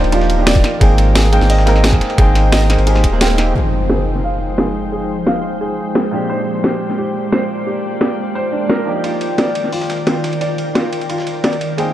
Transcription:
Already playing: F3 A#3 D4 D#4 F4 G4 A#4 C5 D5 G5
0.04 D#1, ride
0.12 F3 A#3 D4 D#4 F4 G4, closed hi-hat, ride
0.21 snare
0.30 closed hi-hat, ride
0.37 F3 A#3 D4 D#4 G4
0.47 D5, snare, closed hi-hat, ride
0.56 kick, ride
0.64 snare, closed hi-hat, ride
0.80 G#1 G#3 A#3 C4 D#4 G#4 C5 G5, kick, closed hi-hat, ride
0.98 closed hi-hat, ride
1.15 G#4, snare, closed hi-hat, ride
1.32 G#3 A#3 C4 D#4 G5, closed hi-hat, ride
1.41 G#1, snare
1.50 D#5, closed hi-hat, open hi-hat
1.58 snare
1.65 G#3 A#3 C4 D#4 A#4, snare, closed hi-hat, ride
1.76 snare
1.84 G#4, snare, closed hi-hat, ride
1.93 kick, snare
2.01 snare, closed hi-hat, ride
2.10 ride
2.17 G#1 G#3 A#3 C4 D#4 G#4 G5, kick, closed hi-hat, ride
2.35 snare, closed hi-hat, ride
2.52 D#5, snare, closed hi-hat, ride
2.69 G#3 A#3 C4 D#4 A#4, snare, closed hi-hat, ride
2.78 G#1, ride
2.86 G#3 A#3 C4 D#4 G4 G#4, closed hi-hat, ride
2.95 snare
3.04 D#1, kick, closed hi-hat, ride
3.12 G#3 A#3 C4 D#4 G#4
3.20 G#3 A#3 C4 D#4 G#4 G5, snare, closed hi-hat, ride
3.30 ride
3.37 G#3 A#3 C4 D#4 G4, snare, closed hi-hat, ride
3.54 F3 G#3 D#4 G#4 C5 G5, impact
3.90 G#4, snare
4.16 snare
4.24 F5
4.58 G#4, snare
4.92 G#4
5.27 F5, snare
5.61 G#4
5.95 G#4, snare
6.11 A#2 F3 G#3 A#3 C4 D4 F4 G4 D5
6.30 C5
6.64 G4, snare
6.90 snare
6.98 G4
7.32 C5, snare
7.67 G4
8.01 G4, snare
8.35 C5
8.52 D4
8.70 A#4, snare
8.85 D#3 F3 A#3 D4 D#4 G4 A#4
9.04 F4, ride
9.21 ride
9.38 D5, snare, ride
9.55 ride
9.64 snare
9.72 F4, open hi-hat
9.81 snare
9.90 snare, ride
10.07 F4, snare, ride
10.24 snare, ride
10.33 ride
10.41 D5, ride
10.58 ride
10.75 F4, snare, ride
10.93 ride
11.01 ride
11.09 F4, ride
11.18 snare
11.27 ride
11.44 D5, snare, ride
11.53 ride
11.61 ride
11.77 G#3 A#3 C4 D#4 G#4 A#4 C5 G5, ride

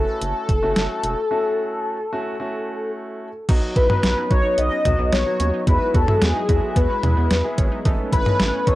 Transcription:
Already playing: A3 C#4 E4 F#4 A4
0.22 F#1, closed hi-hat
0.49 F#1, kick, closed hi-hat
0.63 F#1 A3 C#4 E4 F#4
0.76 F#1, snare, closed hi-hat
1.03 E1, closed hi-hat
1.31 A3 C#4 E4 F#4
2.13 A3 C#4 E4 F#4
2.40 A3 C#4 E4 F#4
3.49 B1 F#3 B3 D#4 F#4, kick, closed hi-hat, crash
3.76 B1 E4 B4, kick, closed hi-hat
3.90 F#3 B3 D#4 F#4, mid tom
4.03 B1, snare, closed hi-hat
4.17 C#4
4.31 B1 F#3 B3 D#4 F#4 C#5, kick, closed hi-hat
4.58 B1 B3 D#5, closed hi-hat
4.72 C#4
4.85 B1 F#3 B3 D#4 F#4, closed hi-hat, mid tom
4.99 B1 B3
5.13 B1 B3 C#5, snare, closed hi-hat
5.26 F#3 B3 D#4 F#4
5.40 D#2 C#4, closed hi-hat
5.53 D#4
5.67 E2 G#3 B3 E4 F#4 B4, kick, closed hi-hat
5.94 E2 F#4 A4, kick, closed hi-hat
6.08 G#3 B3 E4 F#4, mid tom
6.22 E2 G#4, snare, closed hi-hat
6.35 D#4
6.49 E2 G#3 B3 E4 F#4, kick, closed hi-hat
6.76 E2 B3 B4, kick, closed hi-hat
6.90 C#4
7.03 E2 G#3 B3 E4 G#4, closed hi-hat, mid tom
7.17 E2 B3
7.31 E2 B3, snare, closed hi-hat
7.44 G#3 B3 E4 G#4
7.58 G#1 C#4, kick, closed hi-hat
7.72 D#4
7.85 A1 A3 B3 C#4 D#4 E4 A4, kick, closed hi-hat
8.12 A1 E4 B4, kick, closed hi-hat
8.26 B3 C#4 D#4 E4 A4, mid tom
8.40 A1, snare, closed hi-hat
8.53 C#4
8.67 A1 B3 C#4 D#4 E4 A4 C#5, kick, closed hi-hat

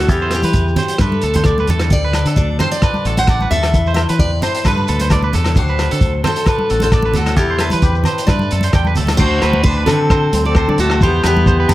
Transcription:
0.09 E2 E3 E4 G4, kick, closed hi-hat, shekere
0.21 C5, shekere
0.31 G4, cross-stick, closed hi-hat, shekere
0.43 E3 B4, closed hi-hat, high conga, shekere
0.53 E2 E3, kick, closed hi-hat, shekere
0.68 shekere
0.76 F#3 C5, closed hi-hat, low conga, shekere
0.88 closed hi-hat, shekere
0.98 G2 G3 A3 D4 A4 B4, kick, cross-stick, closed hi-hat, shekere
1.12 high conga, shekere
1.21 D2 A4, closed hi-hat, shekere
1.34 C5, closed hi-hat, high conga, low conga
1.44 G3 D4 D5, kick, cross-stick, closed hi-hat, shekere
1.58 B4, high conga, shekere
1.67 E2 A3 A4, closed hi-hat, low conga, shekere
1.79 cross-stick, closed hi-hat, shekere
1.90 D2 D3 C4 D5, kick, closed hi-hat, shekere
2.05 B4
2.13 cross-stick, closed hi-hat, low agogo, shekere
2.25 D3 A4, closed hi-hat, shekere
2.36 D2 F#3 D4 D5, kick, closed hi-hat, shekere
2.59 C4 C5, cross-stick, closed hi-hat, low conga, low agogo, shekere
2.71 D5, closed hi-hat, shekere
2.82 D4 B4, kick, cross-stick, closed hi-hat, low agogo, shekere
2.94 high conga, shekere
3.05 A1 A2 F#4 A4, closed hi-hat, shekere
3.17 C5 F#5, closed hi-hat, high conga
3.27 D5, kick, cross-stick, closed hi-hat, low agogo, shekere
3.41 B4, high conga, shekere
3.51 D#2 D4 A4 E5, closed hi-hat, low conga, shekere
3.63 cross-stick, closed hi-hat, low agogo, shekere
3.73 E2 E3 E4, kick, closed hi-hat, shekere
3.86 C5, shekere
3.94 E5, cross-stick, closed hi-hat, low agogo
4.09 E3 B4, closed hi-hat, shekere
4.19 E2 C4 D5, kick, closed hi-hat, shekere
4.42 E4 C5, closed hi-hat, low conga, low agogo, shekere
4.54 closed hi-hat, shekere
4.64 G2 A3 D4 A4 B4, muted clean electric guitar stroke, kick, cross-stick, closed hi-hat, low agogo, shekere
4.77 high conga, shekere
4.88 D2 A4, closed hi-hat, shekere
4.99 C5, closed hi-hat, high conga
5.10 B2 D5, kick, cross-stick, closed hi-hat, low agogo, shekere
5.22 B4, high conga, shekere
5.33 E2 C3 A4, closed hi-hat, low conga, shekere
5.44 cross-stick, closed hi-hat, low agogo, shekere
5.56 D2 D3 F#3 C4 D4 F#4 C5, kick, closed hi-hat, shekere
5.68 B4, shekere
5.79 cross-stick, closed hi-hat, low agogo, shekere
5.91 D3 A4, closed hi-hat, shekere
6.01 D2 F#3, kick, closed hi-hat, shekere
6.24 C4 A4 C5, cross-stick, closed hi-hat, low conga, low agogo, shekere
6.36 closed hi-hat, shekere
6.46 D4 B4, kick, cross-stick, closed hi-hat, low agogo, shekere
6.59 high conga
6.69 A1 A2 F#4 A4, closed hi-hat, shekere
6.80 A4 C5, closed hi-hat, high conga
6.92 C3 D5, kick, cross-stick, closed hi-hat, low agogo, shekere
7.02 B4, high conga, shekere
7.14 D2 D3 F#4 A4, closed hi-hat, low conga, shekere
7.26 cross-stick, closed hi-hat, low agogo, shekere
7.36 E2 E3 E4 G4, kick, closed hi-hat, shekere
7.51 C5
7.59 B4, cross-stick, closed hi-hat, low agogo, shekere
7.70 E3 B4, closed hi-hat, high conga, shekere
7.82 E2 C4 G4, kick, closed hi-hat, shekere
7.95 shekere
8.04 C5, muted clean electric guitar stroke, closed hi-hat, low conga, low agogo, shekere
8.18 closed hi-hat, shekere
8.27 G2 A3 B4 D5, muted clean electric guitar stroke, kick, cross-stick, closed hi-hat, low agogo, shekere
8.39 high conga, shekere
8.51 F#2 A4, closed hi-hat, shekere
8.61 C5, closed hi-hat, high conga, shekere
8.73 E2 G3 D4 G5, kick, cross-stick, closed hi-hat, low agogo, shekere
8.85 B4, high conga, shekere
8.95 D2 A3 A4, closed hi-hat, low conga, shekere
9.07 cross-stick, closed hi-hat, high conga, low agogo, shekere
9.17 D2 D3 F#3 C4 F#4 C5, kick, crash, shekere
9.21 D4 F#4
9.42 D2 B4, muted clean electric guitar stroke, cross-stick, closed hi-hat, low agogo, shekere
9.53 high conga
9.63 C4 D4 B4 C5, kick, shekere
9.78 B4
9.86 D3 F#3 D4 A4, cross-stick, closed hi-hat, low conga, low agogo, shekere
9.90 C4
10.10 C5, kick, cross-stick, low agogo, shekere
10.33 D2 C4, closed hi-hat, high conga, shekere
10.45 C4 A4 D5
10.55 A2 D4 C5, kick, cross-stick, low agogo, shekere
10.68 D3 D5, high conga
10.78 D2 A3 C4 F#4 A4, closed hi-hat, shekere
10.90 cross-stick, low agogo
11.01 E2 E3 B3 E4 G4 C5, kick, shekere
11.24 E2 B3 E4 G4 B4, cross-stick, closed hi-hat, low agogo, shekere
11.37 high conga
11.46 C5, muted clean electric guitar stroke, kick, shekere
11.60 B4
11.68 F#2 F#3, closed hi-hat, low conga, low agogo, shekere

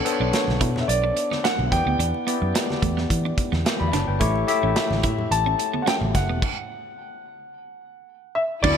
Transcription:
Already playing: B3 D4 A4 C#5
0.05 B3 D4 A4 C5, muted clean electric guitar stroke, closed hi-hat
0.12 C#5
0.20 B1 D4
0.33 C#5, snare, closed hi-hat, muted conga
0.48 B1, snare, muted conga, high conga
0.61 B2 E4, kick, closed hi-hat
0.76 snare, low conga
0.81 E5
0.88 B1 D5, closed hi-hat
1.04 D4
1.16 muted clean electric guitar stroke, closed hi-hat
1.31 B3, snare, high conga
1.44 D4 F#5, snare, closed hi-hat, muted conga
1.59 B1, muted clean electric guitar stroke, high conga
1.71 E2 B3 E4 G4 D5 G5, kick, snare, closed hi-hat, high conga
1.86 D2 B3
1.99 E2 D4, closed hi-hat, low conga
2.14 muted conga
2.27 B3 E4 G4 D5, closed hi-hat
2.42 F#2, muted clean electric guitar stroke
2.55 muted clean electric guitar stroke, snare, closed hi-hat
2.70 snare, high conga
2.82 E2 A3, kick, closed hi-hat
2.97 B3, snare, low conga
3.10 E3, kick, closed hi-hat
3.25 D4, muted conga
3.38 muted clean electric guitar stroke, kick, closed hi-hat
3.52 E2 B3, snare, high conga
3.65 B4 G5, snare, closed hi-hat
3.80 E2 D5 B5, high conga
3.92 F#1 D4 C#5 A5, snare, closed hi-hat, high conga
4.08 G1 B4 G5
4.20 A1 A3 E4 G4 C#5, kick, closed hi-hat, muted conga, low conga
4.36 muted conga
4.47 A3 E4 G4 E5, muted clean electric guitar stroke, closed hi-hat
4.63 A1 C#4
4.76 E5, snare, closed hi-hat, muted conga
4.91 A1, snare, muted conga, high conga
5.03 A2 E4, kick, closed hi-hat
5.18 low conga
5.31 A1 A5, closed hi-hat, muted conga
5.46 C#4, muted conga
5.59 muted clean electric guitar stroke, closed hi-hat
5.74 B3, high conga
5.82 F#5
5.86 C#4 G5, snare, closed hi-hat, muted conga
6.01 A1, muted clean electric guitar stroke, high conga
6.14 F#1 F#5, kick, snare, closed hi-hat, high conga
6.29 E1 B3
6.42 kick, crash
8.35 E5
8.63 D2 D3 F#3 A3 B3 D4 E4 F#4 D5, kick, crash, low conga

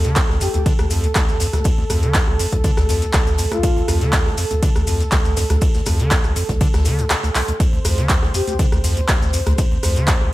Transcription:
Already playing: D2 A4
0.04 D3, snare, closed hi-hat, maracas
0.16 D2, kick, snare, clap, closed hi-hat, ride, maracas
0.29 C2 D2, cross-stick, snare
0.41 F2 G4, closed hi-hat, open hi-hat, maracas
0.54 D2 E2 G4, closed hi-hat, maracas
0.66 D3, kick, closed hi-hat, ride, maracas
0.79 D2, cross-stick, maracas
0.90 F2, closed hi-hat, open hi-hat, maracas
1.03 D2, closed hi-hat, maracas
1.15 D2, kick, cross-stick, snare, clap, closed hi-hat, ride, maracas
1.28 D2, maracas
1.40 F2, snare, closed hi-hat, open hi-hat, maracas
1.53 D2, cross-stick, snare, closed hi-hat, maracas
1.64 D2, kick, closed hi-hat, ride, maracas
1.78 D2
1.90 D2 F2, cross-stick, closed hi-hat, open hi-hat, maracas
2.03 D3, closed hi-hat, maracas
2.14 D2, kick, snare, clap, closed hi-hat, ride, maracas
2.28 C2 D2, cross-stick
2.39 F2, closed hi-hat, open hi-hat, maracas
2.52 D2 E2, kick, closed hi-hat, maracas
2.64 D3, kick, closed hi-hat, ride, maracas
2.77 D2, cross-stick, snare, maracas
2.89 F2, snare, closed hi-hat, open hi-hat, maracas
3.02 D2, closed hi-hat, maracas
3.13 D2, kick, cross-stick, snare, clap, closed hi-hat, ride, maracas
3.26 D2, closed hi-hat, maracas
3.38 F2, closed hi-hat, open hi-hat, maracas
3.52 D2 F4, cross-stick, closed hi-hat, maracas
3.63 D2, kick, closed hi-hat, ride, maracas
3.76 D2, closed hi-hat
3.88 D2 F2, cross-stick, closed hi-hat, open hi-hat, maracas
4.01 D3, snare, closed hi-hat, maracas
4.13 D2, kick, snare, clap, closed hi-hat, ride, maracas
4.26 C2 D2, cross-stick, snare
4.37 F2, closed hi-hat, open hi-hat, maracas
4.51 D2 E2, closed hi-hat, maracas
4.62 D3, kick, closed hi-hat, ride, maracas
4.76 D2, cross-stick, maracas
4.87 F2, closed hi-hat, open hi-hat, maracas
5.00 D2, closed hi-hat, maracas
5.11 D2, kick, cross-stick, snare, clap, closed hi-hat, ride, maracas
5.25 D2, maracas
5.37 F2, snare, closed hi-hat, open hi-hat, maracas
5.50 D2, cross-stick, snare, closed hi-hat, maracas
5.61 D2, kick, closed hi-hat, ride, maracas
5.74 D2, snare, maracas
5.86 D2 F2, cross-stick, closed hi-hat, open hi-hat, maracas
6.00 D3, closed hi-hat, maracas
6.11 D2, kick, snare, clap, closed hi-hat, ride, maracas
6.24 C2 D2, cross-stick, maracas
6.36 F2, closed hi-hat, open hi-hat, maracas
6.48 D2 E2, kick, snare, closed hi-hat, maracas
6.60 D3, kick, closed hi-hat, ride, maracas
6.74 D2, cross-stick, snare, maracas
6.85 D3, snare, closed hi-hat, open hi-hat, maracas
6.99 G2, closed hi-hat, maracas
7.10 D2, cross-stick, snare, clap, closed hi-hat, ride, maracas
7.23 D2, closed hi-hat, maracas
7.35 C2, clap, closed hi-hat, open hi-hat, maracas
7.48 D2, closed hi-hat, maracas
7.60 D2 C5, kick, closed hi-hat, ride, maracas
7.73 D2, closed hi-hat
7.85 D2 F2, cross-stick, closed hi-hat, open hi-hat, maracas
7.97 D3, snare, closed hi-hat, maracas
8.09 D2, kick, snare, clap, closed hi-hat, ride, maracas
8.22 C2 D2, cross-stick, snare
8.34 F2 G4, closed hi-hat, open hi-hat, maracas
8.47 D2 G4, closed hi-hat, maracas
8.59 D3, kick, closed hi-hat, ride, maracas
8.72 D2, cross-stick, maracas
8.84 F2, closed hi-hat, open hi-hat, maracas
8.97 D2, closed hi-hat, maracas
9.08 D2, kick, cross-stick, snare, clap, closed hi-hat, ride, maracas
9.22 D2, maracas
9.33 F2, snare, closed hi-hat, open hi-hat, maracas
9.46 D2, cross-stick, snare, closed hi-hat, maracas
9.58 D2, kick, closed hi-hat, ride, maracas
9.71 D2
9.83 D2 F2, cross-stick, closed hi-hat, open hi-hat, maracas
9.96 D3, closed hi-hat, maracas
10.07 D2, kick, snare, clap, closed hi-hat, ride, maracas
10.21 C2 D2, cross-stick

